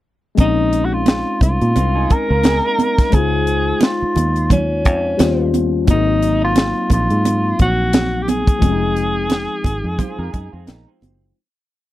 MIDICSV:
0, 0, Header, 1, 7, 480
1, 0, Start_track
1, 0, Key_signature, -5, "minor"
1, 0, Tempo, 686499
1, 265, Time_signature, 4, 2, 24, 8
1, 8335, End_track
2, 0, Start_track
2, 0, Title_t, "Tenor saxophone"
2, 0, Program_c, 0, 66
2, 280, Note_on_c, 0, 63, 84
2, 593, Note_on_c, 0, 66, 60
2, 604, Note_off_c, 0, 63, 0
2, 654, Note_on_c, 0, 65, 84
2, 664, Note_off_c, 0, 66, 0
2, 991, Note_off_c, 0, 65, 0
2, 1001, Note_on_c, 0, 65, 81
2, 1485, Note_on_c, 0, 70, 102
2, 1495, Note_off_c, 0, 65, 0
2, 2199, Note_on_c, 0, 68, 91
2, 2210, Note_off_c, 0, 70, 0
2, 2675, Note_off_c, 0, 68, 0
2, 2686, Note_on_c, 0, 65, 78
2, 3130, Note_off_c, 0, 65, 0
2, 3163, Note_on_c, 0, 61, 85
2, 3848, Note_off_c, 0, 61, 0
2, 4129, Note_on_c, 0, 63, 83
2, 4472, Note_off_c, 0, 63, 0
2, 4506, Note_on_c, 0, 65, 90
2, 4814, Note_off_c, 0, 65, 0
2, 4847, Note_on_c, 0, 65, 81
2, 5289, Note_off_c, 0, 65, 0
2, 5329, Note_on_c, 0, 66, 86
2, 5753, Note_on_c, 0, 67, 68
2, 5764, Note_off_c, 0, 66, 0
2, 5798, Note_on_c, 0, 68, 93
2, 5809, Note_off_c, 0, 67, 0
2, 7710, Note_off_c, 0, 68, 0
2, 8335, End_track
3, 0, Start_track
3, 0, Title_t, "Clean electric guitar"
3, 0, Program_c, 1, 27
3, 1230, Note_on_c, 1, 65, 54
3, 1233, Note_on_c, 1, 60, 45
3, 1361, Note_off_c, 1, 65, 0
3, 1363, Note_off_c, 1, 60, 0
3, 1364, Note_on_c, 1, 68, 65
3, 1369, Note_on_c, 1, 63, 56
3, 1594, Note_off_c, 1, 68, 0
3, 1597, Note_off_c, 1, 63, 0
3, 1603, Note_on_c, 1, 70, 68
3, 1609, Note_on_c, 1, 65, 60
3, 1701, Note_off_c, 1, 70, 0
3, 1704, Note_off_c, 1, 65, 0
3, 1708, Note_on_c, 1, 68, 71
3, 1713, Note_on_c, 1, 63, 55
3, 1841, Note_off_c, 1, 63, 0
3, 1841, Note_off_c, 1, 68, 0
3, 1850, Note_on_c, 1, 63, 57
3, 1854, Note_on_c, 1, 58, 46
3, 2173, Note_off_c, 1, 63, 0
3, 2175, Note_off_c, 1, 58, 0
3, 6980, Note_on_c, 1, 72, 57
3, 6984, Note_on_c, 1, 65, 51
3, 7115, Note_off_c, 1, 72, 0
3, 7117, Note_off_c, 1, 65, 0
3, 7123, Note_on_c, 1, 70, 58
3, 7126, Note_on_c, 1, 65, 54
3, 7216, Note_off_c, 1, 70, 0
3, 7218, Note_on_c, 1, 68, 66
3, 7220, Note_off_c, 1, 65, 0
3, 7223, Note_on_c, 1, 63, 58
3, 7353, Note_off_c, 1, 63, 0
3, 7354, Note_off_c, 1, 68, 0
3, 7356, Note_on_c, 1, 65, 65
3, 7361, Note_on_c, 1, 60, 57
3, 7456, Note_off_c, 1, 65, 0
3, 7459, Note_off_c, 1, 60, 0
3, 7460, Note_on_c, 1, 63, 67
3, 7464, Note_on_c, 1, 58, 54
3, 7595, Note_off_c, 1, 63, 0
3, 7597, Note_off_c, 1, 58, 0
3, 7601, Note_on_c, 1, 60, 54
3, 7606, Note_on_c, 1, 53, 48
3, 7926, Note_off_c, 1, 60, 0
3, 7929, Note_off_c, 1, 53, 0
3, 8335, End_track
4, 0, Start_track
4, 0, Title_t, "Tine electric piano"
4, 0, Program_c, 2, 4
4, 245, Note_on_c, 2, 56, 54
4, 258, Note_on_c, 2, 60, 50
4, 275, Note_on_c, 2, 61, 47
4, 291, Note_on_c, 2, 63, 56
4, 410, Control_c, 2, 64, 127
4, 2151, Note_off_c, 2, 56, 0
4, 2158, Note_off_c, 2, 60, 0
4, 2167, Note_off_c, 2, 61, 0
4, 2168, Note_on_c, 2, 56, 52
4, 2175, Note_off_c, 2, 63, 0
4, 2183, Note_on_c, 2, 72, 51
4, 2199, Note_on_c, 2, 63, 50
4, 2200, Control_c, 2, 64, 0
4, 2214, Note_on_c, 2, 65, 59
4, 2333, Control_c, 2, 64, 127
4, 3591, Note_off_c, 2, 56, 0
4, 3599, Note_off_c, 2, 72, 0
4, 3607, Note_off_c, 2, 63, 0
4, 3615, Note_off_c, 2, 65, 0
4, 3616, Note_on_c, 2, 55, 61
4, 3627, Note_on_c, 2, 72, 50
4, 3633, Note_on_c, 2, 61, 52
4, 3640, Control_c, 2, 64, 0
4, 3641, Note_on_c, 2, 65, 62
4, 3781, Control_c, 2, 64, 127
4, 4088, Note_on_c, 2, 54, 57
4, 4103, Note_off_c, 2, 55, 0
4, 4103, Note_on_c, 2, 58, 53
4, 4108, Note_off_c, 2, 72, 0
4, 4111, Note_off_c, 2, 61, 0
4, 4115, Note_off_c, 2, 65, 0
4, 4119, Control_c, 2, 64, 0
4, 4120, Note_on_c, 2, 60, 48
4, 4135, Note_on_c, 2, 63, 68
4, 4220, Control_c, 2, 64, 127
4, 5988, Note_off_c, 2, 54, 0
4, 5996, Note_off_c, 2, 58, 0
4, 6004, Note_off_c, 2, 60, 0
4, 6004, Note_on_c, 2, 53, 52
4, 6012, Note_off_c, 2, 63, 0
4, 6019, Note_on_c, 2, 56, 55
4, 6036, Note_on_c, 2, 60, 52
4, 6037, Control_c, 2, 64, 0
4, 6052, Note_on_c, 2, 61, 48
4, 6092, Note_off_c, 2, 61, 0
4, 6098, Note_on_c, 2, 63, 57
4, 6138, Control_c, 2, 64, 127
4, 7905, Note_off_c, 2, 53, 0
4, 7913, Note_off_c, 2, 56, 0
4, 7921, Note_off_c, 2, 60, 0
4, 7952, Note_off_c, 2, 63, 0
4, 7955, Control_c, 2, 64, 0
4, 8335, End_track
5, 0, Start_track
5, 0, Title_t, "Fingered electric bass"
5, 0, Program_c, 3, 33
5, 270, Note_on_c, 3, 34, 79
5, 861, Note_off_c, 3, 34, 0
5, 987, Note_on_c, 3, 36, 73
5, 1106, Note_off_c, 3, 36, 0
5, 1129, Note_on_c, 3, 46, 78
5, 1215, Note_off_c, 3, 46, 0
5, 1232, Note_on_c, 3, 36, 85
5, 1435, Note_off_c, 3, 36, 0
5, 1610, Note_on_c, 3, 37, 78
5, 1814, Note_off_c, 3, 37, 0
5, 2190, Note_on_c, 3, 37, 86
5, 2600, Note_off_c, 3, 37, 0
5, 2911, Note_on_c, 3, 39, 81
5, 3397, Note_off_c, 3, 39, 0
5, 3397, Note_on_c, 3, 41, 72
5, 3599, Note_off_c, 3, 41, 0
5, 3635, Note_on_c, 3, 39, 91
5, 4110, Note_on_c, 3, 32, 77
5, 4121, Note_off_c, 3, 39, 0
5, 4701, Note_off_c, 3, 32, 0
5, 4828, Note_on_c, 3, 34, 85
5, 4947, Note_off_c, 3, 34, 0
5, 4968, Note_on_c, 3, 44, 83
5, 5258, Note_off_c, 3, 44, 0
5, 5312, Note_on_c, 3, 34, 70
5, 5900, Note_off_c, 3, 34, 0
5, 6028, Note_on_c, 3, 29, 76
5, 6618, Note_off_c, 3, 29, 0
5, 6744, Note_on_c, 3, 32, 70
5, 6863, Note_off_c, 3, 32, 0
5, 6882, Note_on_c, 3, 41, 82
5, 6969, Note_off_c, 3, 41, 0
5, 7122, Note_on_c, 3, 41, 76
5, 7209, Note_off_c, 3, 41, 0
5, 7230, Note_on_c, 3, 42, 64
5, 7346, Note_off_c, 3, 42, 0
5, 7364, Note_on_c, 3, 41, 70
5, 7450, Note_off_c, 3, 41, 0
5, 7468, Note_on_c, 3, 34, 78
5, 7585, Note_off_c, 3, 34, 0
5, 7706, Note_on_c, 3, 30, 69
5, 7910, Note_off_c, 3, 30, 0
5, 8335, End_track
6, 0, Start_track
6, 0, Title_t, "Muted fingered electric bass strokes"
6, 2813, Note_on_c, 9, 29, 45
6, 2883, Note_off_c, 9, 29, 0
6, 8335, End_track
7, 0, Start_track
7, 0, Title_t, "Drums"
7, 262, Note_on_c, 9, 62, 41
7, 268, Note_on_c, 9, 36, 86
7, 269, Note_on_c, 9, 42, 71
7, 332, Note_off_c, 9, 62, 0
7, 338, Note_off_c, 9, 36, 0
7, 339, Note_off_c, 9, 42, 0
7, 509, Note_on_c, 9, 42, 64
7, 578, Note_off_c, 9, 42, 0
7, 741, Note_on_c, 9, 42, 69
7, 741, Note_on_c, 9, 63, 53
7, 756, Note_on_c, 9, 38, 106
7, 811, Note_off_c, 9, 42, 0
7, 811, Note_off_c, 9, 63, 0
7, 826, Note_off_c, 9, 38, 0
7, 985, Note_on_c, 9, 62, 42
7, 986, Note_on_c, 9, 36, 70
7, 997, Note_on_c, 9, 42, 66
7, 1055, Note_off_c, 9, 62, 0
7, 1056, Note_off_c, 9, 36, 0
7, 1067, Note_off_c, 9, 42, 0
7, 1128, Note_on_c, 9, 42, 39
7, 1198, Note_off_c, 9, 42, 0
7, 1229, Note_on_c, 9, 62, 46
7, 1233, Note_on_c, 9, 42, 81
7, 1299, Note_off_c, 9, 62, 0
7, 1303, Note_off_c, 9, 42, 0
7, 1470, Note_on_c, 9, 62, 28
7, 1472, Note_on_c, 9, 42, 48
7, 1473, Note_on_c, 9, 36, 65
7, 1540, Note_off_c, 9, 62, 0
7, 1542, Note_off_c, 9, 42, 0
7, 1543, Note_off_c, 9, 36, 0
7, 1703, Note_on_c, 9, 63, 62
7, 1706, Note_on_c, 9, 42, 85
7, 1713, Note_on_c, 9, 38, 102
7, 1772, Note_off_c, 9, 63, 0
7, 1776, Note_off_c, 9, 42, 0
7, 1783, Note_off_c, 9, 38, 0
7, 1948, Note_on_c, 9, 63, 60
7, 1955, Note_on_c, 9, 42, 69
7, 2018, Note_off_c, 9, 63, 0
7, 2025, Note_off_c, 9, 42, 0
7, 2087, Note_on_c, 9, 36, 77
7, 2087, Note_on_c, 9, 42, 46
7, 2094, Note_on_c, 9, 38, 31
7, 2157, Note_off_c, 9, 36, 0
7, 2157, Note_off_c, 9, 42, 0
7, 2164, Note_off_c, 9, 38, 0
7, 2182, Note_on_c, 9, 62, 41
7, 2189, Note_on_c, 9, 36, 90
7, 2189, Note_on_c, 9, 42, 70
7, 2252, Note_off_c, 9, 62, 0
7, 2258, Note_off_c, 9, 42, 0
7, 2259, Note_off_c, 9, 36, 0
7, 2427, Note_on_c, 9, 42, 60
7, 2497, Note_off_c, 9, 42, 0
7, 2662, Note_on_c, 9, 63, 62
7, 2663, Note_on_c, 9, 42, 69
7, 2677, Note_on_c, 9, 38, 101
7, 2732, Note_off_c, 9, 63, 0
7, 2733, Note_off_c, 9, 42, 0
7, 2747, Note_off_c, 9, 38, 0
7, 2906, Note_on_c, 9, 62, 41
7, 2919, Note_on_c, 9, 42, 69
7, 2976, Note_off_c, 9, 62, 0
7, 2989, Note_off_c, 9, 42, 0
7, 3048, Note_on_c, 9, 42, 41
7, 3117, Note_off_c, 9, 42, 0
7, 3148, Note_on_c, 9, 36, 79
7, 3152, Note_on_c, 9, 42, 79
7, 3156, Note_on_c, 9, 62, 44
7, 3156, Note_on_c, 9, 64, 67
7, 3218, Note_off_c, 9, 36, 0
7, 3222, Note_off_c, 9, 42, 0
7, 3226, Note_off_c, 9, 62, 0
7, 3226, Note_off_c, 9, 64, 0
7, 3392, Note_on_c, 9, 42, 54
7, 3394, Note_on_c, 9, 36, 63
7, 3395, Note_on_c, 9, 62, 29
7, 3462, Note_off_c, 9, 42, 0
7, 3464, Note_off_c, 9, 36, 0
7, 3465, Note_off_c, 9, 62, 0
7, 3630, Note_on_c, 9, 42, 91
7, 3630, Note_on_c, 9, 63, 64
7, 3637, Note_on_c, 9, 38, 94
7, 3700, Note_off_c, 9, 42, 0
7, 3700, Note_off_c, 9, 63, 0
7, 3707, Note_off_c, 9, 38, 0
7, 3873, Note_on_c, 9, 63, 57
7, 3877, Note_on_c, 9, 42, 68
7, 3943, Note_off_c, 9, 63, 0
7, 3946, Note_off_c, 9, 42, 0
7, 4107, Note_on_c, 9, 62, 45
7, 4111, Note_on_c, 9, 36, 88
7, 4112, Note_on_c, 9, 42, 78
7, 4177, Note_off_c, 9, 62, 0
7, 4181, Note_off_c, 9, 36, 0
7, 4182, Note_off_c, 9, 42, 0
7, 4352, Note_on_c, 9, 42, 64
7, 4422, Note_off_c, 9, 42, 0
7, 4585, Note_on_c, 9, 42, 73
7, 4585, Note_on_c, 9, 63, 56
7, 4599, Note_on_c, 9, 38, 104
7, 4655, Note_off_c, 9, 42, 0
7, 4655, Note_off_c, 9, 63, 0
7, 4669, Note_off_c, 9, 38, 0
7, 4823, Note_on_c, 9, 62, 44
7, 4826, Note_on_c, 9, 36, 70
7, 4834, Note_on_c, 9, 42, 68
7, 4893, Note_off_c, 9, 62, 0
7, 4896, Note_off_c, 9, 36, 0
7, 4904, Note_off_c, 9, 42, 0
7, 4967, Note_on_c, 9, 42, 37
7, 5037, Note_off_c, 9, 42, 0
7, 5072, Note_on_c, 9, 62, 49
7, 5073, Note_on_c, 9, 42, 91
7, 5142, Note_off_c, 9, 62, 0
7, 5143, Note_off_c, 9, 42, 0
7, 5307, Note_on_c, 9, 42, 49
7, 5311, Note_on_c, 9, 36, 64
7, 5311, Note_on_c, 9, 62, 29
7, 5377, Note_off_c, 9, 42, 0
7, 5381, Note_off_c, 9, 36, 0
7, 5381, Note_off_c, 9, 62, 0
7, 5546, Note_on_c, 9, 42, 91
7, 5549, Note_on_c, 9, 63, 67
7, 5554, Note_on_c, 9, 38, 102
7, 5616, Note_off_c, 9, 42, 0
7, 5619, Note_off_c, 9, 63, 0
7, 5624, Note_off_c, 9, 38, 0
7, 5790, Note_on_c, 9, 63, 61
7, 5794, Note_on_c, 9, 42, 77
7, 5860, Note_off_c, 9, 63, 0
7, 5864, Note_off_c, 9, 42, 0
7, 5925, Note_on_c, 9, 36, 82
7, 5928, Note_on_c, 9, 42, 49
7, 5995, Note_off_c, 9, 36, 0
7, 5998, Note_off_c, 9, 42, 0
7, 6026, Note_on_c, 9, 62, 41
7, 6027, Note_on_c, 9, 36, 94
7, 6029, Note_on_c, 9, 42, 71
7, 6096, Note_off_c, 9, 62, 0
7, 6097, Note_off_c, 9, 36, 0
7, 6099, Note_off_c, 9, 42, 0
7, 6268, Note_on_c, 9, 42, 58
7, 6338, Note_off_c, 9, 42, 0
7, 6500, Note_on_c, 9, 42, 70
7, 6501, Note_on_c, 9, 63, 55
7, 6515, Note_on_c, 9, 38, 104
7, 6570, Note_off_c, 9, 42, 0
7, 6571, Note_off_c, 9, 63, 0
7, 6585, Note_off_c, 9, 38, 0
7, 6742, Note_on_c, 9, 62, 41
7, 6743, Note_on_c, 9, 36, 73
7, 6755, Note_on_c, 9, 42, 69
7, 6812, Note_off_c, 9, 62, 0
7, 6813, Note_off_c, 9, 36, 0
7, 6825, Note_off_c, 9, 42, 0
7, 6983, Note_on_c, 9, 36, 85
7, 6985, Note_on_c, 9, 62, 48
7, 6985, Note_on_c, 9, 64, 65
7, 6989, Note_on_c, 9, 42, 81
7, 7053, Note_off_c, 9, 36, 0
7, 7055, Note_off_c, 9, 62, 0
7, 7055, Note_off_c, 9, 64, 0
7, 7059, Note_off_c, 9, 42, 0
7, 7227, Note_on_c, 9, 42, 57
7, 7229, Note_on_c, 9, 36, 66
7, 7297, Note_off_c, 9, 42, 0
7, 7299, Note_off_c, 9, 36, 0
7, 7462, Note_on_c, 9, 63, 69
7, 7463, Note_on_c, 9, 42, 91
7, 7471, Note_on_c, 9, 38, 99
7, 7532, Note_off_c, 9, 63, 0
7, 7533, Note_off_c, 9, 42, 0
7, 7541, Note_off_c, 9, 38, 0
7, 7706, Note_on_c, 9, 63, 58
7, 7713, Note_on_c, 9, 42, 67
7, 7776, Note_off_c, 9, 63, 0
7, 7783, Note_off_c, 9, 42, 0
7, 8335, End_track
0, 0, End_of_file